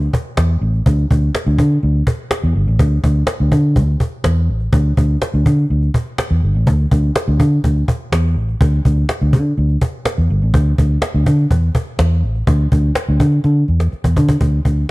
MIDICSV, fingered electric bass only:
0, 0, Header, 1, 3, 480
1, 0, Start_track
1, 0, Tempo, 483871
1, 853, Time_signature, 4, 2, 24, 8
1, 14789, End_track
2, 0, Start_track
2, 0, Title_t, "Fingered electric bass"
2, 0, Program_c, 0, 33
2, 373, Note_on_c, 0, 40, 87
2, 553, Note_off_c, 0, 40, 0
2, 610, Note_on_c, 0, 33, 89
2, 791, Note_off_c, 0, 33, 0
2, 855, Note_on_c, 0, 38, 109
2, 1035, Note_off_c, 0, 38, 0
2, 1099, Note_on_c, 0, 38, 91
2, 1277, Note_off_c, 0, 38, 0
2, 1454, Note_on_c, 0, 38, 102
2, 1543, Note_off_c, 0, 38, 0
2, 1572, Note_on_c, 0, 50, 101
2, 1753, Note_off_c, 0, 50, 0
2, 1817, Note_on_c, 0, 38, 93
2, 1996, Note_off_c, 0, 38, 0
2, 2416, Note_on_c, 0, 40, 89
2, 2505, Note_off_c, 0, 40, 0
2, 2535, Note_on_c, 0, 31, 93
2, 2624, Note_off_c, 0, 31, 0
2, 2654, Note_on_c, 0, 33, 93
2, 2744, Note_off_c, 0, 33, 0
2, 2772, Note_on_c, 0, 38, 103
2, 2953, Note_off_c, 0, 38, 0
2, 3012, Note_on_c, 0, 38, 96
2, 3192, Note_off_c, 0, 38, 0
2, 3375, Note_on_c, 0, 38, 93
2, 3464, Note_off_c, 0, 38, 0
2, 3489, Note_on_c, 0, 50, 97
2, 3730, Note_on_c, 0, 38, 89
2, 3745, Note_off_c, 0, 50, 0
2, 3911, Note_off_c, 0, 38, 0
2, 4216, Note_on_c, 0, 40, 102
2, 4460, Note_off_c, 0, 40, 0
2, 4460, Note_on_c, 0, 33, 84
2, 4637, Note_off_c, 0, 33, 0
2, 4689, Note_on_c, 0, 38, 100
2, 4871, Note_off_c, 0, 38, 0
2, 4934, Note_on_c, 0, 38, 90
2, 5114, Note_off_c, 0, 38, 0
2, 5295, Note_on_c, 0, 38, 89
2, 5384, Note_off_c, 0, 38, 0
2, 5415, Note_on_c, 0, 50, 101
2, 5594, Note_off_c, 0, 50, 0
2, 5656, Note_on_c, 0, 38, 90
2, 5835, Note_off_c, 0, 38, 0
2, 6256, Note_on_c, 0, 40, 87
2, 6345, Note_off_c, 0, 40, 0
2, 6379, Note_on_c, 0, 31, 83
2, 6467, Note_off_c, 0, 31, 0
2, 6501, Note_on_c, 0, 33, 92
2, 6616, Note_off_c, 0, 33, 0
2, 6616, Note_on_c, 0, 38, 107
2, 6795, Note_off_c, 0, 38, 0
2, 6861, Note_on_c, 0, 38, 91
2, 7038, Note_off_c, 0, 38, 0
2, 7219, Note_on_c, 0, 38, 99
2, 7307, Note_off_c, 0, 38, 0
2, 7339, Note_on_c, 0, 50, 100
2, 7517, Note_off_c, 0, 50, 0
2, 7578, Note_on_c, 0, 38, 87
2, 7756, Note_off_c, 0, 38, 0
2, 8056, Note_on_c, 0, 40, 86
2, 8296, Note_off_c, 0, 40, 0
2, 8296, Note_on_c, 0, 33, 89
2, 8475, Note_off_c, 0, 33, 0
2, 8539, Note_on_c, 0, 38, 108
2, 8717, Note_off_c, 0, 38, 0
2, 8783, Note_on_c, 0, 38, 101
2, 8959, Note_off_c, 0, 38, 0
2, 9141, Note_on_c, 0, 38, 95
2, 9257, Note_on_c, 0, 50, 98
2, 9272, Note_off_c, 0, 38, 0
2, 9436, Note_off_c, 0, 50, 0
2, 9500, Note_on_c, 0, 38, 92
2, 9678, Note_off_c, 0, 38, 0
2, 10099, Note_on_c, 0, 40, 92
2, 10187, Note_off_c, 0, 40, 0
2, 10218, Note_on_c, 0, 31, 99
2, 10306, Note_off_c, 0, 31, 0
2, 10341, Note_on_c, 0, 33, 89
2, 10428, Note_off_c, 0, 33, 0
2, 10455, Note_on_c, 0, 38, 111
2, 10634, Note_off_c, 0, 38, 0
2, 10698, Note_on_c, 0, 38, 94
2, 10876, Note_off_c, 0, 38, 0
2, 11056, Note_on_c, 0, 38, 94
2, 11145, Note_off_c, 0, 38, 0
2, 11173, Note_on_c, 0, 50, 93
2, 11353, Note_off_c, 0, 50, 0
2, 11414, Note_on_c, 0, 40, 96
2, 11594, Note_off_c, 0, 40, 0
2, 11895, Note_on_c, 0, 40, 99
2, 12137, Note_off_c, 0, 40, 0
2, 12137, Note_on_c, 0, 33, 98
2, 12316, Note_off_c, 0, 33, 0
2, 12372, Note_on_c, 0, 38, 103
2, 12553, Note_off_c, 0, 38, 0
2, 12618, Note_on_c, 0, 38, 106
2, 12796, Note_off_c, 0, 38, 0
2, 12981, Note_on_c, 0, 38, 98
2, 13068, Note_off_c, 0, 38, 0
2, 13094, Note_on_c, 0, 50, 96
2, 13273, Note_off_c, 0, 50, 0
2, 13336, Note_on_c, 0, 50, 102
2, 13515, Note_off_c, 0, 50, 0
2, 13575, Note_on_c, 0, 40, 94
2, 13754, Note_off_c, 0, 40, 0
2, 13937, Note_on_c, 0, 40, 83
2, 14026, Note_off_c, 0, 40, 0
2, 14058, Note_on_c, 0, 50, 101
2, 14236, Note_off_c, 0, 50, 0
2, 14292, Note_on_c, 0, 38, 97
2, 14472, Note_off_c, 0, 38, 0
2, 14535, Note_on_c, 0, 38, 85
2, 14715, Note_off_c, 0, 38, 0
2, 14789, End_track
3, 0, Start_track
3, 0, Title_t, "Muted fingered electric bass strokes"
3, 13818, Note_on_c, 9, 29, 49
3, 13917, Note_off_c, 9, 29, 0
3, 14789, End_track
0, 0, End_of_file